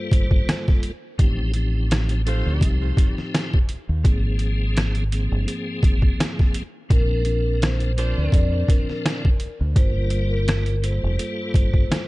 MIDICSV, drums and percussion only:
0, 0, Header, 1, 2, 480
1, 0, Start_track
1, 0, Key_signature, -2, "major"
1, 0, Tempo, 714286
1, 801, Time_signature, 4, 2, 24, 8
1, 8116, End_track
2, 0, Start_track
2, 0, Title_t, "Drums"
2, 77, Note_on_c, 9, 36, 102
2, 86, Note_on_c, 9, 42, 80
2, 144, Note_off_c, 9, 36, 0
2, 153, Note_off_c, 9, 42, 0
2, 207, Note_on_c, 9, 36, 87
2, 274, Note_off_c, 9, 36, 0
2, 328, Note_on_c, 9, 38, 112
2, 331, Note_on_c, 9, 42, 92
2, 332, Note_on_c, 9, 37, 92
2, 395, Note_off_c, 9, 38, 0
2, 399, Note_off_c, 9, 37, 0
2, 399, Note_off_c, 9, 42, 0
2, 457, Note_on_c, 9, 36, 87
2, 460, Note_on_c, 9, 38, 39
2, 524, Note_off_c, 9, 36, 0
2, 527, Note_off_c, 9, 38, 0
2, 558, Note_on_c, 9, 42, 79
2, 625, Note_off_c, 9, 42, 0
2, 800, Note_on_c, 9, 36, 117
2, 801, Note_on_c, 9, 42, 90
2, 867, Note_off_c, 9, 36, 0
2, 868, Note_off_c, 9, 42, 0
2, 1032, Note_on_c, 9, 42, 77
2, 1099, Note_off_c, 9, 42, 0
2, 1285, Note_on_c, 9, 42, 95
2, 1290, Note_on_c, 9, 38, 114
2, 1294, Note_on_c, 9, 37, 91
2, 1352, Note_off_c, 9, 42, 0
2, 1357, Note_off_c, 9, 38, 0
2, 1361, Note_off_c, 9, 37, 0
2, 1406, Note_on_c, 9, 42, 51
2, 1473, Note_off_c, 9, 42, 0
2, 1523, Note_on_c, 9, 42, 76
2, 1591, Note_off_c, 9, 42, 0
2, 1754, Note_on_c, 9, 36, 93
2, 1764, Note_on_c, 9, 42, 93
2, 1821, Note_off_c, 9, 36, 0
2, 1831, Note_off_c, 9, 42, 0
2, 1997, Note_on_c, 9, 36, 104
2, 2005, Note_on_c, 9, 42, 81
2, 2064, Note_off_c, 9, 36, 0
2, 2073, Note_off_c, 9, 42, 0
2, 2140, Note_on_c, 9, 38, 37
2, 2207, Note_off_c, 9, 38, 0
2, 2248, Note_on_c, 9, 38, 114
2, 2251, Note_on_c, 9, 42, 93
2, 2252, Note_on_c, 9, 37, 89
2, 2315, Note_off_c, 9, 38, 0
2, 2318, Note_off_c, 9, 42, 0
2, 2319, Note_off_c, 9, 37, 0
2, 2376, Note_on_c, 9, 36, 87
2, 2443, Note_off_c, 9, 36, 0
2, 2478, Note_on_c, 9, 42, 78
2, 2545, Note_off_c, 9, 42, 0
2, 2719, Note_on_c, 9, 36, 120
2, 2721, Note_on_c, 9, 42, 92
2, 2786, Note_off_c, 9, 36, 0
2, 2788, Note_off_c, 9, 42, 0
2, 2951, Note_on_c, 9, 42, 76
2, 3018, Note_off_c, 9, 42, 0
2, 3204, Note_on_c, 9, 42, 93
2, 3209, Note_on_c, 9, 38, 114
2, 3213, Note_on_c, 9, 37, 88
2, 3271, Note_off_c, 9, 42, 0
2, 3276, Note_off_c, 9, 38, 0
2, 3280, Note_off_c, 9, 37, 0
2, 3326, Note_on_c, 9, 42, 52
2, 3393, Note_off_c, 9, 42, 0
2, 3443, Note_on_c, 9, 42, 75
2, 3510, Note_off_c, 9, 42, 0
2, 3682, Note_on_c, 9, 42, 90
2, 3749, Note_off_c, 9, 42, 0
2, 3916, Note_on_c, 9, 36, 106
2, 3925, Note_on_c, 9, 42, 81
2, 3984, Note_off_c, 9, 36, 0
2, 3992, Note_off_c, 9, 42, 0
2, 4047, Note_on_c, 9, 36, 89
2, 4114, Note_off_c, 9, 36, 0
2, 4169, Note_on_c, 9, 38, 116
2, 4172, Note_on_c, 9, 42, 91
2, 4173, Note_on_c, 9, 37, 91
2, 4236, Note_off_c, 9, 38, 0
2, 4240, Note_off_c, 9, 37, 0
2, 4240, Note_off_c, 9, 42, 0
2, 4296, Note_on_c, 9, 36, 88
2, 4300, Note_on_c, 9, 38, 39
2, 4363, Note_off_c, 9, 36, 0
2, 4367, Note_off_c, 9, 38, 0
2, 4398, Note_on_c, 9, 42, 80
2, 4465, Note_off_c, 9, 42, 0
2, 4639, Note_on_c, 9, 36, 119
2, 4641, Note_on_c, 9, 42, 90
2, 4706, Note_off_c, 9, 36, 0
2, 4708, Note_off_c, 9, 42, 0
2, 4871, Note_on_c, 9, 42, 75
2, 4938, Note_off_c, 9, 42, 0
2, 5122, Note_on_c, 9, 42, 92
2, 5127, Note_on_c, 9, 38, 116
2, 5131, Note_on_c, 9, 37, 91
2, 5189, Note_off_c, 9, 42, 0
2, 5194, Note_off_c, 9, 38, 0
2, 5199, Note_off_c, 9, 37, 0
2, 5244, Note_on_c, 9, 42, 51
2, 5312, Note_off_c, 9, 42, 0
2, 5362, Note_on_c, 9, 42, 79
2, 5429, Note_off_c, 9, 42, 0
2, 5593, Note_on_c, 9, 36, 95
2, 5602, Note_on_c, 9, 42, 91
2, 5660, Note_off_c, 9, 36, 0
2, 5669, Note_off_c, 9, 42, 0
2, 5836, Note_on_c, 9, 36, 101
2, 5844, Note_on_c, 9, 42, 82
2, 5903, Note_off_c, 9, 36, 0
2, 5911, Note_off_c, 9, 42, 0
2, 5978, Note_on_c, 9, 38, 37
2, 6045, Note_off_c, 9, 38, 0
2, 6086, Note_on_c, 9, 38, 116
2, 6089, Note_on_c, 9, 42, 92
2, 6090, Note_on_c, 9, 37, 91
2, 6153, Note_off_c, 9, 38, 0
2, 6156, Note_off_c, 9, 42, 0
2, 6157, Note_off_c, 9, 37, 0
2, 6215, Note_on_c, 9, 36, 89
2, 6282, Note_off_c, 9, 36, 0
2, 6315, Note_on_c, 9, 42, 76
2, 6383, Note_off_c, 9, 42, 0
2, 6558, Note_on_c, 9, 36, 118
2, 6559, Note_on_c, 9, 42, 91
2, 6625, Note_off_c, 9, 36, 0
2, 6626, Note_off_c, 9, 42, 0
2, 6790, Note_on_c, 9, 42, 79
2, 6857, Note_off_c, 9, 42, 0
2, 7041, Note_on_c, 9, 42, 94
2, 7047, Note_on_c, 9, 38, 111
2, 7051, Note_on_c, 9, 37, 88
2, 7109, Note_off_c, 9, 42, 0
2, 7114, Note_off_c, 9, 38, 0
2, 7118, Note_off_c, 9, 37, 0
2, 7164, Note_on_c, 9, 42, 51
2, 7232, Note_off_c, 9, 42, 0
2, 7282, Note_on_c, 9, 42, 78
2, 7349, Note_off_c, 9, 42, 0
2, 7522, Note_on_c, 9, 42, 92
2, 7589, Note_off_c, 9, 42, 0
2, 7756, Note_on_c, 9, 36, 105
2, 7765, Note_on_c, 9, 42, 80
2, 7823, Note_off_c, 9, 36, 0
2, 7832, Note_off_c, 9, 42, 0
2, 7886, Note_on_c, 9, 36, 90
2, 7953, Note_off_c, 9, 36, 0
2, 8007, Note_on_c, 9, 38, 119
2, 8011, Note_on_c, 9, 42, 94
2, 8012, Note_on_c, 9, 37, 94
2, 8075, Note_off_c, 9, 38, 0
2, 8078, Note_off_c, 9, 42, 0
2, 8079, Note_off_c, 9, 37, 0
2, 8116, End_track
0, 0, End_of_file